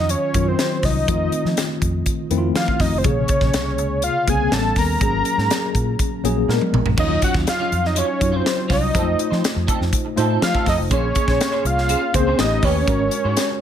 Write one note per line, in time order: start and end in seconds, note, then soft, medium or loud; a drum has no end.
0.00 0.14 F2 medium
0.00 0.34 D#3 medium
0.00 0.35 F#3 medium
0.00 0.35 C#4 medium
0.00 0.35 F4 medium
0.00 0.12 D#5 medium
0.09 0.50 C#5 medium
0.09 closed hi-hat medium
0.34 0.53 F#2 medium
0.34 0.80 D#3 medium
0.34 0.80 F#3 medium
0.34 0.80 C#4 medium
0.34 0.80 F4 medium
0.34 kick medium
0.34 closed hi-hat medium
0.48 0.86 C5 medium
0.59 snare loud
0.59 closed hi-hat medium
0.83 1.02 C2 medium
0.83 1.82 D#5 medium
0.83 kick medium
0.83 snare soft
0.83 open hi-hat medium
1.08 1.27 F2 loud
1.08 1.69 D#3 medium
1.08 1.69 A3 medium
1.08 1.69 C4 medium
1.08 1.69 F4 medium
1.08 kick loud
1.08 closed hi-hat medium
1.32 closed hi-hat medium
1.45 1.54 F3 medium
1.45 snare soft
1.57 snare loud
1.57 closed hi-hat loud
1.82 2.01 F2 medium
1.82 kick medium
1.82 closed hi-hat medium
2.06 kick medium
2.06 closed hi-hat medium
2.30 2.50 F2 medium
2.30 2.76 D#3 medium
2.30 2.76 A3 medium
2.30 2.76 C4 medium
2.30 2.37 E4 medium
2.30 closed hi-hat medium
2.37 2.80 F4 loud
2.55 2.65 F3 medium
2.55 2.82 F5 medium
2.55 snare loud
2.55 closed hi-hat medium
2.68 kick medium
2.79 2.89 F2 medium
2.79 3.00 D#5 medium
2.79 kick medium
2.79 snare soft
2.79 open hi-hat medium
2.92 3.02 F1 medium
2.98 3.06 C5 medium
3.04 3.24 A#1 loud
3.04 3.65 C3 medium
3.04 3.65 C#3 medium
3.04 3.65 A#3 medium
3.04 3.65 G#4 medium
3.04 4.03 C#5 loud
3.04 kick loud
3.04 closed hi-hat medium
3.28 kick medium
3.28 closed hi-hat medium
3.41 3.51 A#1 medium
3.41 kick medium
3.41 snare soft
3.54 3.78 C2 loud
3.54 snare loud
3.54 closed hi-hat medium
3.78 4.07 C#2 medium
3.78 closed hi-hat medium
4.02 4.31 F5 loud
4.02 closed hi-hat loud
4.27 4.47 C2 medium
4.27 4.52 C#3 medium
4.27 4.52 A#3 medium
4.27 4.52 C4 medium
4.27 4.53 G#4 medium
4.27 4.55 G#5 loud
4.27 kick medium
4.27 closed hi-hat medium
4.51 4.71 A1 loud
4.51 4.91 G3 medium
4.51 4.91 B3 medium
4.51 4.91 C#4 medium
4.51 4.92 A4 medium
4.51 4.77 A5 loud
4.51 snare loud
4.51 closed hi-hat medium
4.76 4.96 D#2 medium
4.76 6.21 A#5 loud
4.76 kick medium
4.76 snare soft
4.76 open hi-hat medium
5.01 5.20 G#1 loud
5.01 5.62 F#3 medium
5.01 5.62 A#3 medium
5.01 5.62 C#4 medium
5.01 5.62 G#4 medium
5.01 kick loud
5.01 closed hi-hat medium
5.25 closed hi-hat medium
5.38 5.47 G#2 medium
5.38 snare soft
5.50 snare loud
5.50 closed hi-hat loud
5.75 5.94 A#2 medium
5.75 kick medium
5.75 closed hi-hat medium
5.99 kick medium
5.99 closed hi-hat medium
6.24 6.43 A#1 medium
6.24 6.48 F#3 medium
6.24 6.49 A#3 medium
6.24 6.49 C#4 medium
6.24 6.49 G#4 loud
6.24 closed hi-hat medium
6.48 6.58 A#2 medium
6.48 6.88 G#3 medium
6.48 6.88 B3 medium
6.48 6.88 D4 medium
6.48 6.88 A#4 loud
6.48 snare medium
6.61 high tom medium
6.73 6.83 A#1 medium
6.73 mid tom medium
6.85 6.95 A#1 medium
6.85 floor tom medium
6.97 7.17 D#2 loud
6.97 7.04 F3 medium
6.97 7.11 F#3 medium
6.97 7.12 C#4 medium
6.97 7.59 D#4 medium
6.97 7.12 F4 medium
6.97 7.59 F4 medium
6.97 7.59 C#5 medium
6.97 7.21 D#5 loud
6.97 kick loud
6.97 crash medium
7.04 7.62 F#3 medium
7.22 7.33 F#3 medium
7.22 7.34 C#4 medium
7.22 7.34 F#4 medium
7.22 7.35 F#5 loud
7.22 kick medium
7.22 closed hi-hat medium
7.34 7.44 D#2 medium
7.34 7.46 F#3 medium
7.34 7.46 C#4 medium
7.34 7.46 F4 medium
7.34 kick medium
7.34 snare soft
7.47 7.88 F5 loud
7.47 muted clean electric guitar stroke soft
7.47 snare loud
7.47 closed hi-hat loud
7.59 7.70 F#3 medium
7.59 7.71 C#4 medium
7.59 7.71 F4 medium
7.71 8.01 F2 medium
7.71 muted clean electric guitar stroke soft
7.71 closed hi-hat medium
7.84 8.00 D#5 medium
7.84 muted clean electric guitar stroke soft
7.84 snare soft
7.95 8.10 F#3 medium
7.95 8.08 C#4 medium
7.95 8.08 F4 loud
7.95 8.37 C#5 loud
7.95 closed hi-hat loud
8.09 muted clean electric guitar stroke soft
8.20 8.40 F#2 medium
8.20 8.66 F#3 medium
8.20 8.67 C#4 medium
8.20 8.66 D#4 medium
8.20 8.66 F4 medium
8.20 muted clean electric guitar stroke soft
8.20 kick medium
8.20 closed hi-hat medium
8.32 8.44 F#3 medium
8.32 8.44 C#4 medium
8.32 8.43 F4 medium
8.32 8.71 C5 medium
8.46 snare loud
8.46 closed hi-hat medium
8.57 muted clean electric guitar stroke soft
8.68 8.89 C2 medium
8.68 8.83 F#3 medium
8.68 8.81 C#4 medium
8.68 8.80 F4 loud
8.68 kick medium
8.68 snare soft
8.68 open hi-hat medium
8.73 9.66 D#5 medium
8.82 muted clean electric guitar stroke soft
8.94 9.14 F2 loud
8.94 9.00 F#3 medium
8.94 9.08 C4 medium
8.94 9.06 D#4 medium
8.94 9.56 D#4 medium
8.94 9.56 F4 medium
8.94 9.05 A4 medium
8.94 9.56 C5 medium
8.94 kick loud
8.94 closed hi-hat medium
9.01 9.58 A3 medium
9.06 muted clean electric guitar stroke soft
9.19 muted clean electric guitar stroke soft
9.19 closed hi-hat medium
9.30 9.41 F3 medium
9.30 9.41 C4 medium
9.30 9.41 D#4 medium
9.30 9.42 C5 medium
9.30 snare soft
9.42 muted clean electric guitar stroke soft
9.42 snare loud
9.42 closed hi-hat loud
9.55 9.66 F2 medium
9.55 muted clean electric guitar stroke soft
9.67 9.82 C4 medium
9.67 9.80 D#4 medium
9.67 9.79 A4 medium
9.67 kick medium
9.67 closed hi-hat medium
9.80 9.90 F2 medium
9.80 muted clean electric guitar stroke soft
9.80 snare soft
9.92 muted clean electric guitar stroke soft
9.92 kick medium
9.92 closed hi-hat loud
10.05 muted clean electric guitar stroke soft
10.16 10.37 A2 medium
10.16 10.62 A3 medium
10.16 10.30 C4 medium
10.16 10.63 D#4 medium
10.16 10.29 D#4 medium
10.16 10.63 F4 medium
10.16 10.28 A4 medium
10.16 10.63 C5 loud
10.16 closed hi-hat medium
10.29 10.41 C4 medium
10.29 10.41 D#4 medium
10.29 10.40 A4 medium
10.42 10.52 F3 loud
10.42 10.65 F5 loud
10.42 muted clean electric guitar stroke soft
10.42 snare loud
10.42 closed hi-hat medium
10.54 10.64 C4 medium
10.54 10.65 D#4 medium
10.54 10.65 A4 medium
10.54 kick medium
10.65 10.76 F2 loud
10.65 10.80 C4 medium
10.65 10.77 D#4 loud
10.65 10.76 A4 loud
10.65 10.79 D#5 medium
10.65 kick medium
10.65 snare soft
10.65 open hi-hat medium
10.77 10.88 F1 medium
10.77 muted clean electric guitar stroke soft
10.90 11.10 A#1 loud
10.90 11.52 A#3 medium
10.90 11.04 C#4 medium
10.90 11.52 C#4 medium
10.90 11.05 G#4 medium
10.90 11.52 G#4 medium
10.90 11.05 C5 medium
10.90 11.52 C#5 medium
10.90 11.68 C#5 loud
10.90 kick loud
10.90 closed hi-hat medium
11.14 11.26 C#4 medium
11.14 11.26 G#4 medium
11.14 11.26 C#5 medium
11.14 kick medium
11.14 closed hi-hat medium
11.27 11.38 A#1 loud
11.27 11.37 C#4 soft
11.27 11.38 G#4 medium
11.27 11.38 C5 medium
11.27 kick medium
11.27 snare soft
11.39 muted clean electric guitar stroke soft
11.39 snare loud
11.39 closed hi-hat loud
11.52 11.63 C#4 medium
11.52 11.64 G#4 medium
11.52 11.64 C5 medium
11.64 11.94 C2 medium
11.64 12.17 F5 loud
11.64 muted clean electric guitar stroke soft
11.64 closed hi-hat medium
11.77 muted clean electric guitar stroke soft
11.77 snare soft
11.89 12.03 C#4 medium
11.89 12.01 G#4 medium
11.89 12.00 C5 medium
11.89 closed hi-hat loud
12.01 muted clean electric guitar stroke medium
12.13 12.33 C#2 medium
12.13 12.38 A#3 medium
12.13 12.38 C#4 medium
12.13 12.39 G#4 medium
12.13 12.39 C5 medium
12.13 12.42 C5 medium
12.13 muted clean electric guitar stroke soft
12.13 kick medium
12.13 closed hi-hat medium
12.27 12.38 C#4 medium
12.27 12.38 G#4 medium
12.27 12.38 C5 medium
12.37 12.58 A1 loud
12.37 12.77 A3 medium
12.37 12.44 B3 medium
12.37 12.78 G4 medium
12.37 12.78 B4 medium
12.37 12.66 D#5 loud
12.37 snare loud
12.37 closed hi-hat medium
12.44 12.80 C#4 medium
12.51 muted clean electric guitar stroke soft
12.62 12.82 D#2 loud
12.62 12.77 C#4 medium
12.62 12.76 G4 medium
12.62 12.75 B4 medium
12.62 13.61 C#5 loud
12.62 kick medium
12.62 open hi-hat medium
12.76 muted clean electric guitar stroke soft
12.87 13.07 G#1 loud
12.87 13.48 G#3 medium
12.87 13.48 C#4 medium
12.87 13.02 C#4 medium
12.87 13.48 F#4 medium
12.87 13.00 F#4 loud
12.87 13.49 A#4 medium
12.87 12.99 A#4 loud
12.87 kick loud
12.87 closed hi-hat medium
13.00 muted clean electric guitar stroke soft
13.11 muted clean electric guitar stroke soft
13.11 closed hi-hat medium
13.24 13.34 G#2 medium
13.24 13.36 C#4 soft
13.24 13.36 F#4 medium
13.24 13.35 C5 medium
13.37 muted clean electric guitar stroke soft
13.37 snare loud
13.37 closed hi-hat loud
13.50 muted clean electric guitar stroke soft